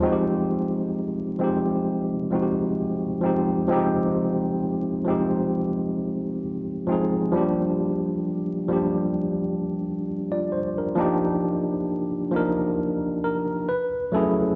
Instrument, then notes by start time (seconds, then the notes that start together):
tine electric piano
0.01 F3 G#3 C4
0.05 D#4 F#4
0.13 G4
1.39 F3 G#3 C4 D#4
1.44 G4
2.30 F3 G#3 C4
2.34 D#4 F#4
2.42 G4
3.21 F3 G#3 C4
3.25 D#4 G4
3.68 F3 G#3 C4
3.72 D#4 G4
5.05 F3 G#3 C4 D#4
5.10 G4
6.87 F3 G#3 C4
6.91 D#4 G#4
7.32 F3 G3 A#3 D4
7.37 G4
8.68 F3 G3 A#3 D4
8.73 G4
10.32 F4 D5
10.52 C5
10.78 D4 A#4
10.95 F3 A#3 D4 D#4
11.01 G4
12.31 F3 A#3 D4
12.35 D#4 A#4
13.24 A#4
13.69 B4
14.12 F#3 A3 C#4 E4 A4
14.17 G#4